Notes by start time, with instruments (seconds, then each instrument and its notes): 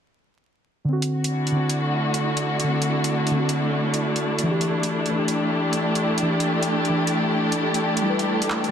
0.84 synth keys D3, synth texture A3 A4
0.89 synth keys C4 F#4
1.02 closed hi-hat
1.17 string section F#4
1.24 closed hi-hat
1.28 string section D4 E4
1.47 closed hi-hat
1.51 synth keys D3
1.56 synth keys C4 F#4
1.70 closed hi-hat
1.74 string section A3
2.14 closed hi-hat
2.37 closed hi-hat
2.60 synth keys D3, closed hi-hat
2.67 synth keys C4 F#4
2.82 closed hi-hat
3.04 closed hi-hat
3.27 closed hi-hat
3.31 synth keys D3
3.35 synth keys C4 F#4
3.49 closed hi-hat
3.94 closed hi-hat
4.16 closed hi-hat
4.38 closed hi-hat
4.43 synth keys E3 D4
4.51 synth keys G4
4.61 closed hi-hat
4.83 closed hi-hat
5.06 closed hi-hat
5.10 synth keys E3
5.14 synth keys D4 G4
5.24 string section G4, closed hi-hat
5.73 closed hi-hat
5.95 closed hi-hat
6.18 closed hi-hat
6.22 synth keys E3
6.26 synth keys D4 G4
6.40 closed hi-hat
6.63 closed hi-hat
6.85 closed hi-hat
6.89 synth keys E3
6.93 synth keys D4 G4
7.07 closed hi-hat
7.52 closed hi-hat
7.74 closed hi-hat
7.97 closed hi-hat
8.02 synth keys G3 E4
8.07 synth keys A4 B4
8.19 closed hi-hat
8.42 closed hi-hat
8.50 clap
8.64 closed hi-hat